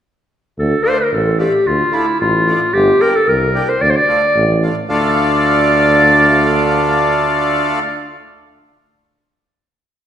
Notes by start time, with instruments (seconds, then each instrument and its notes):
0.59 tuba D2, clarinet A4
0.84 accordion A3 D4 F4, clarinet C5
0.99 clarinet A#4
1.12 tuba A1, clarinet A4
1.38 accordion A3 D4 F4, clarinet G4
1.67 tuba D2, clarinet F4
1.92 accordion A3 D4 F4, clarinet E4
2.21 tuba A1, clarinet F4
2.47 accordion A3 D4 F4
2.74 tuba G1, clarinet G4
2.99 accordion A#3 D4 G4, clarinet A#4
3.15 clarinet A4
3.28 tuba C2, clarinet A#4
3.54 accordion A#3 D4 G4
3.69 clarinet C5
3.82 tuba D2, clarinet D5
3.90 clarinet C5
3.96 clarinet D5
4.08 accordion A3 D4 F4
4.36 tuba A1
4.62 accordion A3 D4 F4
4.89 tuba D2, accordion A3 D4 F4, clarinet D5